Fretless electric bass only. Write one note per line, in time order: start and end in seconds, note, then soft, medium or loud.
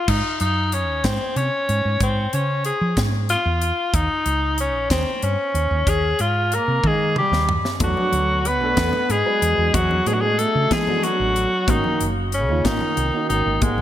0.08 0.21 G#2 loud
0.41 0.89 F#2 medium
0.89 1.01 D#2 medium
1.04 1.17 G#2 medium
1.36 1.49 C3 medium
1.69 1.81 G#2 medium
1.85 1.98 G#2 medium
2.01 2.26 G#2 loud
2.34 2.71 C#3 medium
2.81 2.94 F3 medium
2.97 3.35 G#2 medium
3.46 3.71 E2 medium
3.94 4.07 D#2 loud
4.26 4.74 C#2 medium
4.74 4.87 A#1 medium
4.91 5.03 D#2 medium
5.23 5.35 G2 medium
5.54 5.67 D#2 medium
5.71 5.84 D#2 medium
5.87 6.12 D#2 loud
6.20 6.57 G#2 medium
6.68 6.80 C3 medium
6.84 7.22 D#3 medium
7.32 7.57 D#2 medium
7.80 7.93 E2 loud
8.12 8.61 D2 medium
8.61 8.74 B1 medium
8.77 8.90 E2 medium
9.09 9.22 G#2 medium
9.42 9.55 E2 medium
9.58 9.71 E2 medium
9.74 10.00 E2 loud
10.06 10.44 A2 medium
10.55 10.68 C#3 medium
10.71 11.09 E3 medium
11.20 11.45 A1 medium
11.68 11.81 G#1 loud
12.01 12.50 F#1 medium
12.50 12.62 D#2 medium
12.65 12.78 G#1 medium
12.97 13.10 C2 medium
13.30 13.42 G#1 medium
13.46 13.59 G#1 medium
13.62 13.81 G#1 loud